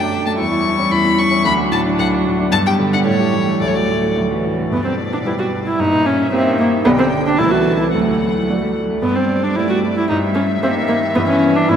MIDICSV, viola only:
0, 0, Header, 1, 2, 480
1, 0, Start_track
1, 0, Key_signature, 2, "major"
1, 0, Tempo, 534759
1, 343, Time_signature, 2, 2, 24, 8
1, 2745, Tempo, 542986
1, 4208, Key_signature, 1, "major"
1, 8025, Tempo, 532860
1, 10488, End_track
2, 0, Start_track
2, 0, Title_t, "Viola"
2, 0, Program_c, 0, 41
2, 0, Note_on_c, 0, 62, 45
2, 309, Note_off_c, 0, 62, 0
2, 353, Note_on_c, 0, 64, 54
2, 1307, Note_on_c, 0, 62, 59
2, 1320, Note_off_c, 0, 64, 0
2, 2252, Note_off_c, 0, 62, 0
2, 2258, Note_on_c, 0, 59, 56
2, 2744, Note_on_c, 0, 57, 55
2, 2757, Note_off_c, 0, 59, 0
2, 4027, Note_off_c, 0, 57, 0
2, 4219, Note_on_c, 0, 59, 61
2, 4320, Note_off_c, 0, 59, 0
2, 4326, Note_on_c, 0, 60, 57
2, 4396, Note_off_c, 0, 60, 0
2, 4575, Note_on_c, 0, 62, 58
2, 4621, Note_off_c, 0, 62, 0
2, 4694, Note_on_c, 0, 64, 58
2, 4740, Note_off_c, 0, 64, 0
2, 4805, Note_on_c, 0, 66, 64
2, 4875, Note_off_c, 0, 66, 0
2, 5048, Note_on_c, 0, 64, 66
2, 5166, Note_on_c, 0, 63, 84
2, 5179, Note_off_c, 0, 64, 0
2, 5400, Note_on_c, 0, 61, 74
2, 5413, Note_off_c, 0, 63, 0
2, 5633, Note_off_c, 0, 61, 0
2, 5640, Note_on_c, 0, 60, 78
2, 5865, Note_off_c, 0, 60, 0
2, 5871, Note_on_c, 0, 58, 82
2, 5942, Note_off_c, 0, 58, 0
2, 6099, Note_on_c, 0, 59, 94
2, 6147, Note_off_c, 0, 59, 0
2, 6219, Note_on_c, 0, 60, 78
2, 6289, Note_off_c, 0, 60, 0
2, 6462, Note_on_c, 0, 62, 78
2, 6567, Note_on_c, 0, 64, 86
2, 6581, Note_off_c, 0, 62, 0
2, 6682, Note_on_c, 0, 66, 73
2, 6695, Note_off_c, 0, 64, 0
2, 6930, Note_off_c, 0, 66, 0
2, 6934, Note_on_c, 0, 64, 56
2, 7040, Note_off_c, 0, 64, 0
2, 7046, Note_on_c, 0, 57, 58
2, 7765, Note_off_c, 0, 57, 0
2, 8020, Note_on_c, 0, 59, 76
2, 8138, Note_on_c, 0, 60, 64
2, 8151, Note_off_c, 0, 59, 0
2, 8390, Note_on_c, 0, 62, 63
2, 8403, Note_off_c, 0, 60, 0
2, 8501, Note_on_c, 0, 64, 73
2, 8514, Note_off_c, 0, 62, 0
2, 8618, Note_off_c, 0, 64, 0
2, 8623, Note_on_c, 0, 66, 68
2, 8696, Note_off_c, 0, 66, 0
2, 8867, Note_on_c, 0, 64, 65
2, 8973, Note_off_c, 0, 64, 0
2, 8979, Note_on_c, 0, 63, 74
2, 9051, Note_off_c, 0, 63, 0
2, 9211, Note_on_c, 0, 61, 72
2, 9283, Note_off_c, 0, 61, 0
2, 9467, Note_on_c, 0, 60, 75
2, 9539, Note_off_c, 0, 60, 0
2, 9695, Note_on_c, 0, 58, 74
2, 9767, Note_off_c, 0, 58, 0
2, 9938, Note_on_c, 0, 59, 88
2, 9987, Note_off_c, 0, 59, 0
2, 10052, Note_on_c, 0, 61, 81
2, 10306, Note_on_c, 0, 62, 78
2, 10319, Note_off_c, 0, 61, 0
2, 10420, Note_on_c, 0, 64, 86
2, 10434, Note_off_c, 0, 62, 0
2, 10488, Note_off_c, 0, 64, 0
2, 10488, End_track
0, 0, End_of_file